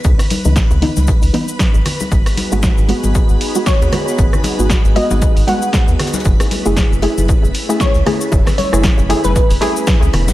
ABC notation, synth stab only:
X:1
M:4/4
L:1/16
Q:"Swing 16ths" 1/4=116
K:G#phr
V:1 name="Synth stab"
z3 [E,B,D] z2 [E,B,D] z3 [E,B,D]4 z2 | z3 [G,B,F]3 [G,B,F]4- [G,B,F] [G,B,F]3 [G,B,F] z | z3 [G,B,F] z2 [G,B,F] z3 [G,B,F]6 | z3 [A,EG]3 [A,EG]4- [A,EG] [A,EG]3 [A,EG] z |
z3 [A,EG] z2 [A,EG] z3 [A,EG]6 |]